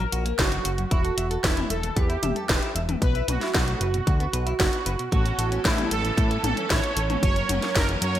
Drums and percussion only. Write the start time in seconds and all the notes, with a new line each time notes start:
0.12 closed hi-hat
0.26 closed hi-hat
0.39 kick, snare, closed hi-hat
0.52 closed hi-hat
0.65 closed hi-hat
0.78 closed hi-hat
0.91 kick, closed hi-hat
1.05 closed hi-hat
1.18 closed hi-hat
1.31 closed hi-hat
1.44 kick, snare, closed hi-hat
1.57 closed hi-hat, high tom
1.70 closed hi-hat
1.83 closed hi-hat
1.97 kick, closed hi-hat
2.10 closed hi-hat
2.23 closed hi-hat, high tom
2.36 closed hi-hat
2.49 kick, snare, closed hi-hat
2.63 closed hi-hat
2.76 closed hi-hat
2.89 closed hi-hat, high tom
3.02 kick, closed hi-hat
3.15 closed hi-hat
3.28 closed hi-hat, high tom
3.41 snare, closed hi-hat
3.54 kick, snare, closed hi-hat
3.68 closed hi-hat
3.81 closed hi-hat
3.94 closed hi-hat
4.07 kick, closed hi-hat
4.20 closed hi-hat
4.33 closed hi-hat
4.47 closed hi-hat
4.60 kick, snare, closed hi-hat
4.73 closed hi-hat
4.86 closed hi-hat
4.99 closed hi-hat
5.12 kick, closed hi-hat
5.26 closed hi-hat
5.39 closed hi-hat
5.52 closed hi-hat
5.65 kick, snare, closed hi-hat
5.78 closed hi-hat, high tom
5.91 closed hi-hat
6.05 closed hi-hat
6.17 kick, closed hi-hat
6.31 closed hi-hat
6.44 closed hi-hat, high tom
6.57 closed hi-hat
6.70 kick, snare, closed hi-hat
6.84 closed hi-hat
6.97 closed hi-hat
7.10 closed hi-hat, high tom
7.23 kick, closed hi-hat
7.36 closed hi-hat
7.49 closed hi-hat, high tom
7.62 snare, closed hi-hat
7.75 kick, snare, closed hi-hat
7.89 closed hi-hat
8.02 closed hi-hat
8.15 closed hi-hat